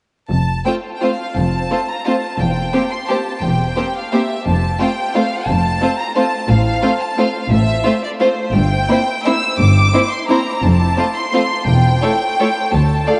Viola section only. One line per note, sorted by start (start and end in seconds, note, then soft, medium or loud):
0.65 0.73 A3 soft
0.65 0.73 C4 soft
1.02 1.10 A3 soft
1.02 1.10 C4 soft
1.71 1.79 A3 soft
1.71 1.79 C4 soft
2.07 2.15 A3 soft
2.07 2.15 C4 soft
2.74 2.82 A#3 soft
2.74 2.82 C4 soft
3.09 3.17 A#3 soft
3.09 3.17 C4 soft
3.77 3.85 A#3 soft
3.77 3.85 C4 soft
4.12 4.21 A#3 soft
4.12 4.20 C4 soft
4.80 4.88 A3 soft
4.80 4.88 C4 soft
5.16 5.24 A3 soft
5.16 5.24 C4 soft
5.81 5.89 A3 soft
5.81 5.89 C4 soft
6.17 6.25 A3 soft
6.17 6.25 C4 soft
6.82 6.90 A3 soft
6.82 6.91 C4 soft
7.17 7.25 A3 soft
7.17 7.25 C4 soft
7.85 7.93 A3 medium
7.85 7.93 C4 soft
8.21 8.29 A3 medium
8.21 8.29 C4 soft
8.89 8.97 A#3 medium
8.89 8.97 C4 soft
9.26 9.34 A#3 soft
9.26 9.34 C4 soft
9.94 10.02 A#3 soft
9.94 10.02 C4 soft
10.29 10.37 A#3 soft
10.29 10.37 C4 soft
10.98 11.06 A3 soft
10.98 11.06 C4 soft
11.33 11.41 A3 soft
11.33 11.41 C4 soft
12.02 12.10 A3 soft
12.02 12.11 E4 soft
12.39 12.47 A3 soft
12.39 12.47 E4 soft
13.08 13.16 A3 soft
13.08 13.16 F4 soft